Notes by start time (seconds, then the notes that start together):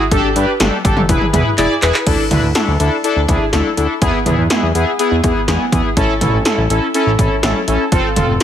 0.11 G1 D4 G4 A4, kick, closed hi-hat
0.36 G2 D4 G4 B4, closed hi-hat
0.60 G1 D4 G4 A4, snare, closed hi-hat
0.85 G1 D4 G4 A4, kick, closed hi-hat
0.97 G1, mid tom
1.09 E1 E4 G#4 B4, kick, closed hi-hat
1.21 mid tom
1.33 E2 E4 G#4 B4, closed hi-hat, mid tom
1.58 E1 E4 G#4 D5, clap, closed hi-hat
1.82 E1 E4 G#4 B4, clap, closed hi-hat
1.94 clap
2.07 D2 D4 E4 A4, kick, closed hi-hat, crash
2.31 D2 D4 E4 B4, closed hi-hat, mid tom
2.43 D2
2.55 D4 E4 A4, snare, closed hi-hat
2.68 D2
2.80 D2 D4 E4 A4, closed hi-hat
3.04 D4 E4 A4, closed hi-hat
3.16 D2
3.28 D2 D4 E4 G#4, kick, closed hi-hat
3.53 D2 D4 E4 A4, snare, closed hi-hat
3.77 D2 D4 E4 A4, closed hi-hat
4.02 E2 B3 E4 G#4, kick, closed hi-hat
4.26 E2 B3 E4 G#4, closed hi-hat, mid tom
4.38 E2
4.50 B3 E4 G#4, snare, closed hi-hat
4.63 E2
4.75 E2 B3 E4 G#4, closed hi-hat
4.99 B3 E4 G#4, closed hi-hat
5.12 E2
5.24 E2 B3 E4 G#4, kick, closed hi-hat
5.48 E2 B3 E4 G#4, snare, closed hi-hat
5.72 E2 B3 E4 G#4, kick, closed hi-hat
5.97 A1 C#4 E4 A4, kick, closed hi-hat
6.21 A1 C#4 E4 A4, closed hi-hat, mid tom
6.33 A1
6.45 C#4 E4 A4, snare, closed hi-hat
6.58 A1
6.70 A1 C#4 E4 A4, closed hi-hat
6.94 C#4 E4 A4, closed hi-hat
7.07 A1
7.19 A1 C#4 E4 A4, kick, closed hi-hat
7.43 A1 C#4 E4 A4, snare, closed hi-hat
7.68 A1 C#4 E4 A4, closed hi-hat
7.92 F1 C4 F4 A4, kick, closed hi-hat
8.16 F1 C4 F4 A4, closed hi-hat, mid tom
8.29 F1